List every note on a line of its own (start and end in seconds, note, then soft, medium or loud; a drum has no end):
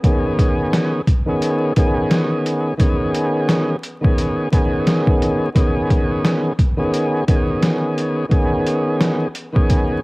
0.03 1.00 D#3 loud
0.03 1.01 B3 medium
0.03 1.01 C#4 medium
0.03 1.02 G#4 loud
0.03 kick loud
0.03 closed hi-hat medium
0.39 kick medium
0.39 closed hi-hat medium
0.73 snare loud
0.73 closed hi-hat medium
1.07 kick loud
1.07 closed hi-hat medium
1.26 1.72 D#3 loud
1.26 1.73 B3 medium
1.26 1.73 C#4 medium
1.26 1.74 G#4 loud
1.42 closed hi-hat medium
1.76 2.73 D#3 medium
1.76 2.74 B3 medium
1.76 2.74 C#4 medium
1.76 2.75 G#4 loud
1.76 kick medium
1.76 closed hi-hat medium
2.11 snare loud
2.11 closed hi-hat medium
2.46 closed hi-hat medium
2.77 3.75 D#3 medium
2.77 3.76 B3 medium
2.77 3.76 C#4 medium
2.77 3.77 G#4 loud
2.77 kick loud
2.77 closed hi-hat medium
3.15 closed hi-hat medium
3.49 snare loud
3.49 closed hi-hat medium
3.83 closed hi-hat medium
4.01 4.48 D#3 medium
4.01 4.48 B3 medium
4.01 4.49 C#4 medium
4.01 4.49 G#4 loud
4.01 kick loud
4.18 closed hi-hat medium
4.51 5.49 D#3 loud
4.51 5.49 B3 medium
4.51 5.49 C#4 medium
4.51 5.50 G#4 loud
4.51 kick loud
4.51 closed hi-hat medium
4.87 snare loud
4.87 closed hi-hat medium
5.07 kick loud
5.22 closed hi-hat medium
5.55 6.52 D#3 loud
5.55 6.52 B3 medium
5.55 6.53 C#4 medium
5.55 6.53 G#4 loud
5.55 kick loud
5.55 closed hi-hat medium
5.90 kick medium
5.90 closed hi-hat medium
6.25 snare loud
6.25 closed hi-hat medium
6.59 kick loud
6.59 closed hi-hat medium
6.77 7.24 D#3 loud
6.77 7.24 B3 medium
6.77 7.25 C#4 medium
6.77 7.25 G#4 loud
6.94 closed hi-hat medium
7.28 8.25 D#3 medium
7.28 8.25 B3 medium
7.28 8.26 C#4 medium
7.28 8.26 G#4 loud
7.28 kick loud
7.28 closed hi-hat medium
7.63 snare loud
7.63 closed hi-hat medium
7.98 closed hi-hat medium
8.29 9.27 D#3 medium
8.29 9.27 B3 medium
8.29 9.28 C#4 medium
8.29 9.28 G#4 loud
8.29 kick loud
8.29 closed hi-hat medium
8.67 closed hi-hat medium
9.01 snare loud
9.01 closed hi-hat medium
9.35 closed hi-hat medium
9.53 9.99 D#3 medium
9.53 10.00 B3 medium
9.53 10.00 C#4 medium
9.53 10.01 G#4 loud
9.53 kick loud
9.70 kick medium
9.70 closed hi-hat medium